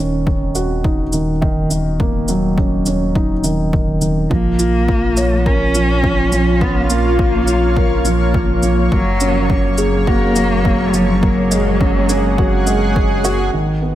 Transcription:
0.00 4.28 D#1 medium
0.00 1.13 D#3 medium
0.00 0.25 C#4 medium
0.26 0.54 C#4 medium
0.26 kick loud
0.55 0.83 F#4 medium
0.55 shaker medium
0.84 1.01 D#4 medium
0.84 kick medium
1.13 1.30 D#3 medium
1.13 shaker medium
1.41 1.69 D#3 medium
1.41 kick loud
1.70 1.98 D#3 medium
1.70 shaker medium
2.00 2.27 A#3 medium
2.00 kick loud
2.28 2.56 F#3 medium
2.28 shaker medium
2.58 2.85 C#4 medium
2.58 kick loud
2.86 3.14 C#4 medium
2.86 shaker medium
3.15 3.32 D#4 medium
3.15 kick medium
3.44 3.71 D#3 medium
3.44 shaker medium
3.73 4.00 D#3 medium
3.73 kick loud
4.01 4.29 D#3 medium
4.01 shaker medium
4.30 8.89 A#1 medium
4.30 4.58 F3 medium
4.30 13.54 A#3 medium
4.30 5.48 A#3 loud
4.30 kick loud
4.59 4.86 F4 medium
4.59 shaker medium
4.88 5.15 F4 medium
4.88 kick medium
4.95 13.95 C#5 medium
5.09 8.92 F4 medium
5.17 5.44 C#5 medium
5.17 shaker medium
5.46 6.63 C#4 loud
5.46 5.62 A#4 medium
5.46 kick medium
5.67 8.92 F5 medium
5.75 5.91 F3 medium
5.75 shaker medium
6.03 6.31 F3 medium
6.03 kick loud
6.32 6.60 F3 medium
6.32 shaker medium
6.61 6.92 B3 medium
6.61 6.88 C#4 medium
6.61 kick loud
6.90 7.17 A#3 medium
6.90 8.05 A#3 medium
6.90 shaker medium
7.18 7.46 F4 medium
7.18 kick loud
7.47 7.75 F4 medium
7.47 shaker medium
7.76 7.92 A#4 medium
7.76 kick medium
8.05 8.32 F3 medium
8.05 shaker medium
8.34 8.61 F3 medium
8.34 kick medium
8.63 8.90 F3 medium
8.63 shaker soft
8.91 13.51 F#1 medium
8.91 9.74 F#3 loud
8.91 9.19 F#3 medium
8.91 kick medium
9.20 9.48 C#4 medium
9.20 shaker medium
9.44 13.95 G#4 medium
9.49 9.77 C#4 medium
9.49 kick medium
9.78 10.06 G#4 medium
9.78 shaker medium
10.07 10.96 A#3 loud
10.07 10.24 F#4 medium
10.07 kick medium
10.36 10.53 F#3 medium
10.36 13.95 F#5 medium
10.36 shaker medium
10.64 10.92 F#3 medium
10.64 kick medium
10.94 11.25 F3 medium
10.94 11.21 F#3 medium
10.94 shaker medium
11.22 12.96 F#3 medium
11.22 11.50 A#3 medium
11.22 kick loud
11.51 11.79 G#3 medium
11.51 shaker medium
11.80 12.08 C#4 medium
11.80 kick loud
12.09 12.37 C#4 medium
12.09 shaker medium
12.38 12.54 F#4 medium
12.38 kick medium
12.67 12.94 G#3 medium
12.67 shaker medium
12.95 13.23 G#3 medium
12.95 kick loud
13.24 13.41 F#4 medium
13.24 shaker medium
13.53 13.95 G#1 medium
13.53 13.81 D#3 medium
13.82 13.95 B3 medium

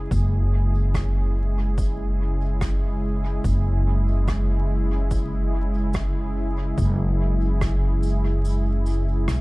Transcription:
0.00 9.41 C#3 medium
0.00 9.41 G#3 medium
0.00 9.41 E4 medium
0.00 9.41 G#4 medium
0.11 3.41 F#1 loud
0.11 kick loud
0.11 cabasa medium
0.95 kick medium
0.95 cross-stick medium
0.95 cabasa medium
1.78 kick loud
1.78 cabasa medium
2.61 kick medium
2.61 cross-stick medium
2.61 cabasa medium
3.44 6.74 F#1 medium
3.44 kick medium
3.44 cabasa medium
4.28 kick medium
4.28 cross-stick medium
4.28 cabasa medium
5.11 kick medium
5.11 cabasa medium
5.94 kick medium
5.94 cross-stick medium
5.94 cabasa medium
6.78 9.27 F#1 loud
6.78 kick loud
6.78 cabasa medium
7.61 kick medium
7.61 cross-stick medium
7.61 cabasa medium
8.03 cabasa soft
8.45 cabasa medium
8.86 cabasa soft
9.28 9.41 B1 medium
9.28 cross-stick medium
9.28 cabasa medium

